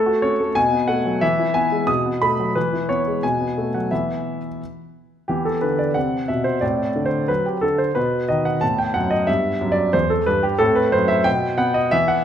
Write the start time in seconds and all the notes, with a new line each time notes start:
Already playing: A3 A4
0.06 F#4
0.22 C#4 C#5
0.40 A3
0.55 B2 G#5
0.72 B3
0.88 A3 F#5
1.06 F#3
1.21 E3 E5
1.40 E4
1.54 B3 G#5
1.72 G#3
1.87 B2 D#6
2.06 B3
2.22 A3 B5
2.40 F#3
2.55 E3 B4
2.73 E4
2.89 B3 C#5
3.08 G#3
3.23 B2 G#5
3.41 B3
3.58 A3
3.74 F#3 F#5
3.91 E3 B3 E4 E5
5.28 E3 B3 G4
5.45 A4
5.61 D3 B4
5.79 D5
5.94 C3 C4 F#5
6.28 B2 E5
6.44 C5
6.61 A2 C4 D5
6.96 D3
7.06 C5
7.28 F#3 B4
7.46 G4
7.61 D3 A4
7.78 C5
7.95 B2 B3 B4
8.29 D#3 D#5
8.45 F#5
8.61 A2 B3 A5
8.78 G5
8.94 F#2 F#5
9.10 D#5
9.27 G2 B3 E5
9.61 F#2
9.72 D5
9.93 E2 C5
10.10 A4
10.26 G2 B4
10.43 G4
10.59 A2 C4 A4
10.76 B4
10.92 F#2 C5
11.08 E5
11.24 B2 B3 G5
11.58 B3 F#5
11.74 D#5
11.91 E3 B3 E5
12.08 F#5